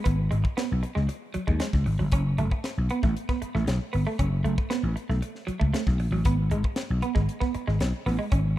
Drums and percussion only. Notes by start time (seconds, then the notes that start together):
0.05 kick, closed hi-hat
0.32 closed hi-hat
0.45 kick
0.58 snare, closed hi-hat
0.83 closed hi-hat
0.96 snare
1.09 closed hi-hat
1.34 closed hi-hat
1.48 kick
1.60 snare, closed hi-hat
1.73 kick, snare
1.86 open hi-hat
2.12 kick, closed hi-hat
2.38 closed hi-hat
2.51 kick
2.64 snare, closed hi-hat
2.90 closed hi-hat
3.03 kick, snare
3.17 closed hi-hat
3.29 kick, snare
3.42 closed hi-hat
3.56 snare
3.67 snare, closed hi-hat
3.93 open hi-hat
4.19 kick, closed hi-hat
4.45 closed hi-hat
4.58 kick
4.71 snare, closed hi-hat
4.97 closed hi-hat
5.10 snare
5.22 closed hi-hat
5.35 snare
5.48 closed hi-hat
5.61 kick
5.74 snare, closed hi-hat
5.87 kick, snare
6.00 open hi-hat
6.25 kick, closed hi-hat
6.51 closed hi-hat
6.64 kick
6.76 snare, closed hi-hat
7.02 closed hi-hat
7.16 kick, snare
7.29 closed hi-hat
7.41 kick, snare
7.54 closed hi-hat
7.68 snare
7.80 snare, closed hi-hat
8.06 snare, open hi-hat
8.32 kick, closed hi-hat